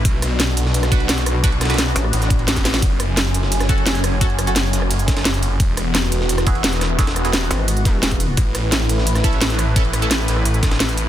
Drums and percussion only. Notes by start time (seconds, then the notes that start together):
0.05 kick, closed hi-hat, ride
0.22 cross-stick, closed hi-hat, ride
0.40 snare, closed hi-hat, ride
0.57 closed hi-hat, ride
0.66 snare
0.74 closed hi-hat, ride
0.83 cross-stick, snare, closed hi-hat
0.92 kick, closed hi-hat, ride
1.00 ride
1.09 snare, closed hi-hat, ride
1.18 snare, closed hi-hat
1.26 cross-stick, closed hi-hat, ride
1.44 kick, closed hi-hat, ride
1.52 ride
1.61 cross-stick, snare, closed hi-hat, ride
1.65 snare, ride
1.70 snare, closed hi-hat, ride
1.74 snare, ride
1.78 snare, closed hi-hat, ride
1.96 snare, closed hi-hat, ride
2.04 cross-stick
2.13 closed hi-hat, ride
2.22 snare, closed hi-hat
2.30 kick, closed hi-hat, ride
2.39 ride
2.48 snare, closed hi-hat, ride
2.56 kick, snare, closed hi-hat
2.65 snare, closed hi-hat, ride
2.74 snare, ride
2.82 kick, closed hi-hat, ride
3.00 cross-stick, closed hi-hat, ride
3.17 snare, closed hi-hat, ride
3.34 closed hi-hat, ride
3.43 snare
3.52 closed hi-hat, ride
3.60 cross-stick, snare, closed hi-hat
3.69 kick, closed hi-hat, ride
3.78 ride
3.86 snare, closed hi-hat, ride
3.95 snare, closed hi-hat
4.04 cross-stick, closed hi-hat, ride
4.21 kick, closed hi-hat, ride
4.30 ride
4.39 cross-stick, closed hi-hat, ride
4.47 closed hi-hat
4.56 snare, closed hi-hat, ride
4.73 snare, closed hi-hat, ride
4.82 cross-stick
4.91 closed hi-hat, ride
4.99 closed hi-hat
5.08 kick, snare, closed hi-hat, ride
5.17 snare, ride
5.25 snare, closed hi-hat, ride
5.34 closed hi-hat
5.43 closed hi-hat, ride
5.60 kick, closed hi-hat, ride
5.77 cross-stick, closed hi-hat, ride
5.95 snare, closed hi-hat, ride
6.12 closed hi-hat, ride
6.21 snare
6.29 closed hi-hat, ride
6.38 cross-stick, snare, closed hi-hat
6.47 kick, closed hi-hat, ride
6.55 ride
6.64 snare, closed hi-hat, ride
6.73 snare, closed hi-hat
6.81 cross-stick, snare, closed hi-hat, ride
6.99 kick, snare, closed hi-hat, ride
7.07 snare, ride
7.16 cross-stick, closed hi-hat
7.25 snare, closed hi-hat, ride
7.33 snare, closed hi-hat, ride
7.51 snare, closed hi-hat, ride
7.59 cross-stick
7.68 closed hi-hat, ride
7.77 closed hi-hat
7.85 kick, snare, closed hi-hat, ride
8.03 snare, closed hi-hat, ride
8.11 kick, closed hi-hat
8.20 closed hi-hat, ride
8.37 kick, closed hi-hat, ride
8.55 cross-stick, closed hi-hat, ride
8.72 snare, closed hi-hat, ride
8.89 closed hi-hat, ride
8.98 snare
9.07 closed hi-hat, ride
9.15 cross-stick, snare, closed hi-hat
9.24 kick, closed hi-hat, ride
9.33 ride
9.41 snare, closed hi-hat, ride
9.50 snare, closed hi-hat
9.59 cross-stick, closed hi-hat, ride
9.76 kick, closed hi-hat, ride
9.85 ride
9.93 cross-stick, closed hi-hat, ride
10.02 closed hi-hat
10.11 snare, closed hi-hat, ride
10.28 snare, closed hi-hat, ride
10.37 cross-stick
10.45 closed hi-hat, ride
10.54 closed hi-hat
10.63 kick, snare, closed hi-hat, ride
10.71 snare, ride
10.80 snare, closed hi-hat, ride
10.89 closed hi-hat
10.97 closed hi-hat, ride